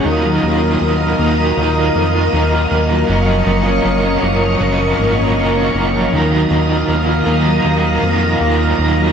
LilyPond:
<<
  \new Staff \with { instrumentName = "String machine" } { \time 4/4 \key dis \minor \tempo 4 = 79 << { <ais' dis'''>1 | <ais' cis'''>1 | <ais' dis'''>1 | } \\ { <dis'' eis''>1~ | <dis'' eis''>1 | <eis'' ais''>1 | } >> }
  \new Staff \with { instrumentName = "Overdriven electric guitar" } { \time 4/4 \key dis \minor <dis fis dis' eis' ais'>4. <dis' eis' ais'>8 <dis' eis' ais'>4 <fis dis' eis' ais'>4 | <fis cis' eis' ais'>2 <fis cis' eis' ais'>4 <fis cis' eis' ais'>4 | <dis fis dis' eis' ais'>4. <dis' eis' ais'>8 <dis' eis' ais'>4 <fis dis' eis' ais'>4 | }
  \new Staff \with { instrumentName = "Clean electric guitar" } { \time 4/4 \key dis \minor dis16 fis16 ais16 eis'16 ais16 eis'16 ais16 fis16 dis8 ais16 eis'16 ais16 eis'16 ais16 fis16 | fis,16 eis16 ais16 cis'16 ais16 cis'16 ais16 eis16 fis,16 eis16 ais16 cis'16 ais16 cis'16 ais16 eis16 | dis16 fis16 ais16 eis'16 ais16 eis'16 ais16 fis16 dis8 ais16 eis'16 ais16 eis'16 ais16 fis16 | }
  \new Staff \with { instrumentName = "Analog synth bass" } { \clef bass \time 4/4 \key dis \minor dis,8 dis,8 dis,8 dis,8 dis,8 eis,8 dis,8 dis,8 | fis,,8 fis,,8 fis,,8 fis,,8 fis,,8 gis,,8 fis,,8 fis,,8 | dis,8 dis,8 dis,8 dis,8 dis,8 eis,8 dis,8 dis,8 | }
>>